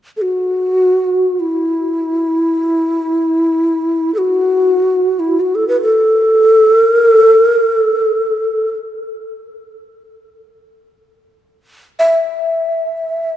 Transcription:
0.17 A4
0.22 F#4
1.40 E4
4.14 F#4 A4
5.20 E4
5.40 F#4
5.55 A4
5.68 B4
5.82 A4
6.84 A#4
7.12 A4
7.42 A#4
7.70 A4
11.99 E5

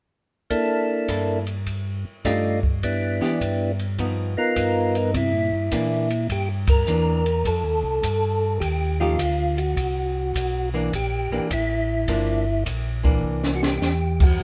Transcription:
0.50 A#3 D4 E4 A4, kick, ride
1.08 G2 A#3 E4 A4, kick, hi-hat pedal, ride
1.47 ride
1.66 kick, ride
2.25 G2 A3 D4 D#4 F4 G4, kick, snare, hi-hat pedal, ride
2.63 kick
2.83 B3 D4 E4 G4, kick, ride
3.21 E3 B3 D4 G4, snare
3.41 G2, kick, hi-hat pedal, ride
3.79 ride
3.98 F3 B3 D#4, kick, ride
4.37 B3 D#4 F4 A#4
4.56 G2, kick, hi-hat pedal, ride
4.95 D#4, ride
5.14 C3 E4, kick, ride
5.33 A#2
5.52 G2
5.72 A#2 E3 A#3 D4, kick, hi-hat pedal, ride
6.10 ride
6.29 G2 G4, kick, ride
6.67 A#4, kick, ride
6.87 E2 E3 A#3 D4, hi-hat pedal
7.26 ride
7.45 F2 A4, kick, ride
7.64 D#2
7.83 C2
8.03 G2, kick, hi-hat pedal, ride
8.60 D#2 G4, kick, ride
9.00 F3 A3 D#4 F4 G4
9.19 D2, kick, hi-hat pedal, ride
9.58 F#4, ride
9.76 C2, kick, ride
10.35 B1, kick, hi-hat pedal, ride
10.74 E3 A#3 D4
10.93 A#1 G4, kick, ride
11.30 A#1 E3 A#3 D4
11.51 A1 E4, kick, hi-hat pedal, ride
12.08 G1 F3 A#3 D4, kick, ride
12.66 A#1, kick, hi-hat pedal, ride
13.03 E3 A#3 D4, kick
13.23 C2
13.44 snare
13.55 F#4
13.63 G4, snare
13.82 E2, snare, hi-hat pedal
14.20 F#4, kick, crash
14.40 kick

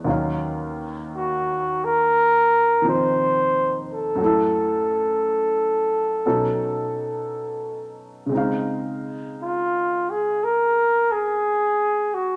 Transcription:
0.04 D#2 D#3 F#3 C#4
0.09 F5
1.16 F#4
1.84 A#4
2.82 D#3 F3 C4 D#4
2.89 C5
3.93 A4
4.15 F#2 F#3
4.21 A3 E4
4.26 A4
6.26 B2 F#3 C#4 D#4 A4
8.26 C#3 G#3
8.32 C4 D#4
8.37 F5
9.42 F4
10.10 G#4
10.44 A#4
11.12 G#4
12.14 F#4

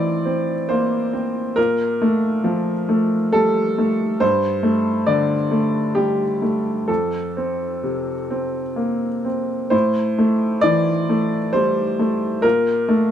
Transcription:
Already playing: A2 E3 C4 C5 D5
0.25 C4
0.69 A#3 C5
1.13 C4
1.56 A#2 A#4
2.02 A3
2.44 F3
2.89 A3
3.33 G3 A4
3.78 A3
4.20 G2 C5
4.63 A3
5.07 D3 D5
5.51 A3
5.95 G3 G4
6.42 A3
6.88 F2 A4
7.37 C4
7.83 C3
8.31 C4
8.76 A#3
9.25 C4
9.70 A2 C5
10.18 A3
10.61 E3 D5
11.09 A3
11.53 G3 C5
11.99 A3
12.42 A#2 A#4
12.88 A3

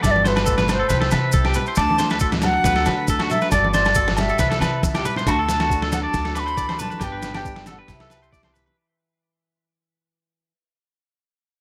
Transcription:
Already playing: F#4
0.03 G1 G2 D5 E5, kick, snare, low agogo, maracas
0.11 D5
0.16 high conga
0.25 F#4 B4 C5, snare, high conga, maracas
0.36 B4, snare, low agogo, maracas
0.46 A2 A4, kick, maracas
0.58 B4, snare, high conga, low conga, maracas
0.68 B2 C5, snare, low conga, low agogo, maracas
0.79 A4
0.89 C2 C3 B4, kick, snare, high conga, maracas
1.01 A4, snare
1.11 C3 E4 B4, snare, high conga, low agogo, maracas
1.32 C2 G4 A4, kick, maracas
1.45 G4, snare, low agogo
1.54 B4, low conga, maracas
1.66 C5, maracas
1.76 D2 D3 D5 A5, kick, snare, low agogo, maracas
1.90 high conga
1.99 D4 C5, snare, high conga, maracas
2.10 B4, snare, low agogo, maracas
2.20 F#4 A4, kick, maracas
2.32 muted clean electric guitar stroke, snare, high conga, low conga, maracas
2.42 F#3 F#5, snare, low conga, low agogo, maracas
2.54 muted clean electric guitar stroke
2.64 D2 A3 B4, kick, snare, high conga, maracas
2.76 A4, snare
2.86 D3 F#4 B4, snare, high conga, low agogo, maracas
3.08 D2 E3 A4, kick, maracas
3.19 F#4, snare, low agogo
3.30 F#3 A4 E5, low conga, maracas
3.41 B4, snare, maracas
3.51 G1 G2 D5, kick, snare, low agogo, maracas
3.65 high conga
3.72 C5 D5, muted steel-string acoustic guitar stroke, snare, high conga, maracas
3.85 snare, low agogo, maracas
3.95 F#4 A4, kick, maracas
4.08 snare, high conga, low conga
4.17 G3 E5, snare, low conga, low agogo, maracas
4.29 A4, maracas
4.39 C2 C3 B4, kick, snare, high conga, maracas
4.51 A4, snare, maracas
4.60 C3 E4 B4, snare, high conga, low agogo, maracas
4.83 C#2 B2, muted clean electric guitar stroke, kick, high conga, maracas
4.94 G4, snare, high conga, low agogo, maracas
5.05 B4, low conga, maracas
5.16 C5, snare, low conga, maracas
5.27 D2 D3 A3 D4 F#4 B5, kick, snare, low agogo, maracas
5.31 A5
5.39 A4
5.49 snare, low conga, maracas
5.60 F#4, snare, high conga, low agogo
5.70 D4, kick, maracas
5.82 A4, snare
5.92 F#3 A4 F#5, snare, high conga, low conga, low agogo, maracas
6.03 D5 A5
6.14 D2 F#4, kick, snare, maracas
6.25 A4, snare
6.35 A2 B4 D6, snare, low agogo, maracas
6.40 B5
6.46 C5, maracas
6.57 E3 D5, kick, snare, maracas
6.69 C5, snare, high conga, low agogo
6.79 F#3 B4 A5, low conga, maracas
6.90 B4, high conga, maracas
7.00 G1 G2 B3 G4 G5, kick, snare, low agogo, maracas
7.04 D4 G4
7.12 B4
7.22 snare, low conga, maracas
7.34 G4 G5, snare, high conga, low agogo
7.45 D4, kick, maracas
7.56 muted clean electric guitar stroke, snare
7.66 G3 A4, snare, high conga, low conga, low agogo, maracas
7.71 F#5
7.79 B4
7.88 C2 C3 B3 E4 G4, kick, snare, maracas
7.92 E5
8.00 A4, snare
8.10 B4, snare, low agogo, maracas
8.22 C5, maracas
8.32 E4 D5, kick, maracas
8.43 C5, snare, high conga, low agogo
8.54 E3 B4, low conga, maracas
8.66 B4, high conga

